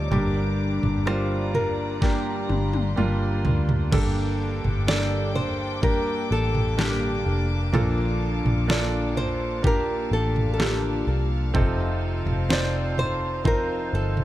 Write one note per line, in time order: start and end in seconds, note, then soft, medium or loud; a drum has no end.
0.00 0.11 G3 medium
0.00 0.14 A3 medium
0.00 0.12 C4 medium
0.00 0.14 C4 medium
0.00 0.13 D#4 medium
0.00 0.12 F4 medium
0.00 0.13 F4 medium
0.00 3.89 G4 medium
0.00 0.12 A4 medium
0.00 1.06 D5 loud
0.00 1.98 D6 medium
0.11 0.79 G1 loud
0.11 1.07 G2 medium
0.11 1.51 G2 medium
0.11 2.02 D3 medium
0.11 1.51 D3 medium
0.11 1.02 G3 medium
0.11 1.06 G3 medium
0.11 1.02 A#3 medium
0.11 1.07 A#3 medium
0.11 1.02 D4 medium
0.11 1.07 D4 medium
0.11 1.03 G4 medium
0.11 1.08 A#4 medium
0.11 3.89 D5 medium
0.11 3.89 A#5 medium
0.11 floor tom medium
0.83 2.46 G1 medium
0.83 floor tom medium
1.06 1.97 G3 medium
1.06 1.54 G3 medium
1.06 1.97 A#3 medium
1.06 1.54 A#3 soft
1.06 1.97 D4 medium
1.06 1.54 D4 medium
1.06 1.97 F4 medium
1.06 1.53 A#4 medium
1.06 1.51 C5 medium
1.06 cross-stick loud
1.54 2.01 G3 soft
1.54 2.01 A#3 soft
1.54 2.02 D4 soft
1.54 2.02 A#4 soft
1.54 2.46 A#4 medium
1.54 floor tom medium
2.01 2.97 G2 medium
2.01 3.92 D3 medium
2.01 2.92 G3 medium
2.01 2.97 G3 medium
2.01 2.92 A#3 medium
2.01 2.98 A#3 medium
2.01 2.93 D4 medium
2.01 2.98 D4 medium
2.01 2.93 G4 medium
2.01 2.99 A#4 medium
2.01 3.91 C6 medium
2.01 kick medium
2.01 snare medium
2.49 2.94 G1 medium
2.49 high tom medium
2.73 high tom medium
2.96 3.42 G1 medium
2.96 3.87 G3 medium
2.96 3.45 G3 medium
2.96 3.87 A#3 medium
2.96 3.45 A#3 medium
2.96 3.88 D4 medium
2.96 3.45 D4 medium
2.96 3.88 F4 medium
2.96 3.44 A#4 medium
2.96 mid tom medium
3.45 3.89 D2 medium
3.45 3.92 G3 soft
3.45 3.92 A#3 soft
3.45 3.92 D4 soft
3.45 3.93 A#4 soft
3.45 floor tom medium
3.69 floor tom medium
3.91 4.60 G1 loud
3.91 5.31 G2 medium
3.91 4.86 G2 medium
3.91 5.31 D3 medium
3.91 4.87 D3 medium
3.91 4.87 G3 medium
3.91 4.82 A#3 medium
3.91 11.51 A#3 medium
3.91 4.88 A#3 medium
3.91 4.83 D4 medium
3.91 4.88 D4 medium
3.91 4.83 G4 medium
3.91 4.83 A4 medium
3.91 4.88 A4 medium
3.91 7.70 G5 medium
3.91 14.24 A5 medium
3.91 11.50 D6 medium
3.91 kick loud
3.91 floor tom medium
3.91 crash medium
4.64 6.27 G1 medium
4.64 floor tom medium
4.87 5.35 G2 medium
4.87 5.35 D3 medium
4.87 5.35 G3 medium
4.87 5.78 A#3 medium
4.87 5.35 A#3 medium
4.87 5.78 D4 medium
4.87 5.35 D4 medium
4.87 5.78 G4 medium
4.87 5.79 A4 medium
4.87 5.34 A4 medium
4.87 5.35 D5 loud
4.87 snare loud
5.35 5.81 G3 soft
5.35 5.82 A#3 soft
5.35 5.82 D4 soft
5.35 5.83 A4 soft
5.35 5.83 C5 medium
5.35 floor tom medium
5.81 6.77 G3 medium
5.81 6.73 A#3 medium
5.81 6.78 A#3 medium
5.81 6.73 D4 medium
5.81 6.78 D4 medium
5.81 6.73 G4 medium
5.81 6.32 A#4 medium
5.81 kick medium
5.81 floor tom medium
6.31 7.22 A1 medium
6.31 6.80 A4 medium
6.55 floor tom medium
6.77 7.26 G2 medium
6.77 7.26 D3 medium
6.77 7.26 G3 medium
6.77 7.68 A#3 medium
6.77 7.26 A#3 medium
6.77 7.68 D4 medium
6.77 7.25 D4 medium
6.77 7.68 G4 medium
6.77 7.46 G4 medium
6.77 7.24 A4 medium
6.77 7.69 A#4 medium
6.77 snare medium
7.25 7.70 F1 medium
7.25 7.74 G3 soft
7.25 7.73 A#3 soft
7.25 7.73 D4 soft
7.25 7.73 A4 soft
7.73 8.41 A#1 loud
7.73 8.68 A#2 medium
7.73 9.12 A#2 medium
7.73 8.68 D3 medium
7.73 9.12 F3 medium
7.73 8.69 F3 medium
7.73 8.64 A#3 medium
7.73 8.68 A#3 medium
7.73 8.64 D4 medium
7.73 8.69 D4 medium
7.73 8.64 F4 medium
7.73 8.64 A4 medium
7.73 8.70 A4 medium
7.73 14.24 F5 medium
7.73 floor tom loud
8.45 10.08 A#1 medium
8.45 floor tom medium
8.67 9.16 A#2 medium
8.67 9.17 D3 medium
8.67 9.17 F3 medium
8.67 9.58 A#3 medium
8.67 9.16 A#3 medium
8.67 9.59 D4 medium
8.67 9.16 D4 medium
8.67 9.59 F4 medium
8.67 9.59 A4 medium
8.67 9.15 A4 medium
8.67 9.17 D5 medium
8.67 snare loud
9.16 9.63 F3 soft
9.16 9.64 A#3 soft
9.16 9.64 D4 soft
9.16 9.64 A4 medium
9.16 9.61 C5 loud
9.16 floor tom medium
9.62 10.60 F3 medium
9.62 10.53 A#3 medium
9.62 10.59 A#3 medium
9.62 10.54 D4 medium
9.62 10.59 D4 medium
9.62 10.54 F4 medium
9.62 10.55 G4 medium
9.62 kick medium
9.62 floor tom medium
9.67 10.10 A#4 loud
10.11 11.03 A1 medium
10.11 10.50 A4 medium
10.36 floor tom medium
10.54 10.60 A4 medium
10.58 11.07 D3 medium
10.58 11.07 F3 medium
10.58 11.49 A#3 medium
10.58 11.07 A#3 medium
10.58 11.49 D4 medium
10.58 11.06 D4 medium
10.58 11.50 F4 medium
10.58 11.28 G4 medium
10.58 11.50 A4 medium
10.58 11.06 A4 medium
10.58 snare medium
11.07 11.51 C2 medium
11.07 11.54 F3 soft
11.07 11.55 A#3 soft
11.07 11.55 D4 soft
11.07 11.54 A4 soft
11.54 12.22 F1 medium
11.54 12.93 C3 medium
11.54 12.49 F3 medium
11.54 12.45 C4 medium
11.54 12.49 C4 medium
11.54 12.45 D#4 medium
11.54 12.49 D#4 medium
11.54 12.45 F4 medium
11.54 12.45 A4 medium
11.54 12.51 A4 medium
11.54 14.24 C5 medium
11.54 kick loud
11.54 floor tom medium
12.26 13.89 F1 medium
12.26 floor tom medium
12.49 12.97 F3 medium
12.49 13.40 C4 medium
12.49 12.98 C4 medium
12.49 13.40 D#4 medium
12.49 12.97 D#4 medium
12.49 13.41 F4 medium
12.49 12.97 A4 medium
12.49 13.41 C5 medium
12.49 12.96 D5 loud
12.49 snare loud
12.98 13.44 C4 soft
12.98 13.45 D#4 soft
12.98 13.45 A4 soft
12.98 13.42 C5 medium
12.98 floor tom medium
13.44 14.24 F3 medium
13.44 14.24 C4 medium
13.44 14.24 D#4 medium
13.44 14.24 F4 medium
13.44 13.94 A#4 medium
13.44 14.24 C5 medium
13.44 kick medium
13.44 floor tom medium
13.93 14.24 G1 medium
13.93 14.24 A4 medium
14.17 floor tom medium